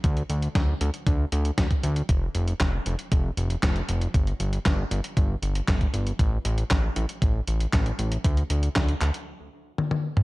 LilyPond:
<<
  \new Staff \with { instrumentName = "Analog synth bass" } { \clef bass \time 4/4 \key d \minor \tempo 4 = 117 d,8 d,8 d,8 d,8 d,8 d,8 d,8 d,8 | f,,8 f,,8 f,,8 f,,8 f,,8 f,,8 f,,8 f,,8 | g,,8 g,,8 g,,8 g,,8 g,,8 g,,8 g,,8 g,,8 | a,,8 a,,8 a,,8 a,,8 a,,8 a,,8 a,,8 a,,8 |
d,8 d,8 d,8 d,8 r2 | }
  \new DrumStaff \with { instrumentName = "Drums" } \drummode { \time 4/4 <hh bd>16 hh16 hh16 hh16 <hh bd sn>8 hh16 hh16 <hh bd>8 hh16 hh16 <hh bd sn>16 <hh bd>16 hh16 hh16 | <hh bd>8 hh16 hh16 <hc hh bd sn>8 hh16 hh16 <hh bd>8 hh16 hh16 <hc hh bd sn>16 hh16 hh16 hh16 | <hh bd>16 hh16 hh16 hh16 <hc hh bd sn>8 hh16 hh16 <hh bd>8 hh16 hh16 <hc hh bd sn>16 <hh bd>16 hh16 hh16 | <hh bd>8 hh16 hh16 <hc hh bd sn>8 hh16 hh16 <hh bd>8 hh16 hh16 <hc hh bd sn>16 hh16 hh16 hh16 |
<hh bd>16 hh16 hh16 hh16 <hc hh bd sn>16 hh16 <hc hh>16 hh16 r4 tommh16 tommh8 toml16 | }
>>